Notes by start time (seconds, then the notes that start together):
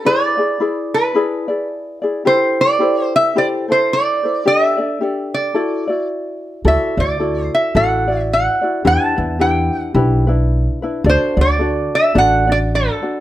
0.05 E4 G#4 B4 D5
0.38 E4 G#4 D5
0.60 E4 G#4 B4 D5
0.94 B4
1.14 E4 G#4 B4 D5
1.48 E4 G#4 D5
2.02 E4 G#4 D5
2.25 E4 G4 A4 C5
2.61 D5
2.79 E4 G4 A4 C5
3.04 C5
3.16 E5
3.36 E4 G4 A4 C5 D5
3.68 E4 A4 C5
3.93 D5
4.23 E4 A4 C5
4.46 D4 G4 A4 D5 D#5
4.65 E5
4.77 D4 A4 D5
5.01 D4 G4 A4 D5
5.34 D5
5.54 E4 F#4 A4 D5
5.87 E4 F#4 D5
6.65 D2 E4 F#4 A4 D5 E5
6.97 D2 E4 F#4 D5
7.20 E4 F#4 A4 D5
7.44 C5
7.55 E5
7.75 A1 E4 F#4 A4 D5 F#5
8.08 E4 F#4 D5
8.21 E5
8.33 F#5
8.61 E4 F#4 D5
8.84 E2 D4 E4 G4 B4 A5
9.16 E2 D4 E4 B4
9.39 D4 E4 G4 B4 G5
9.78 F#5
9.95 B1 D4 E4 G4 B4
10.27 D4 E4 B4
10.82 D4 E4 B4
11.04 D2 D4 F#4 A4 D5
11.09 C5
11.37 D2 D4 F#4 D5
11.41 D5
11.59 D4 F#4 A4 D5
11.95 E5
12.15 A1 D4 F#4 A4 D5 F#5
12.47 D4 F#4 D5
12.52 D5
12.75 A4
13.02 D4 F#4 D5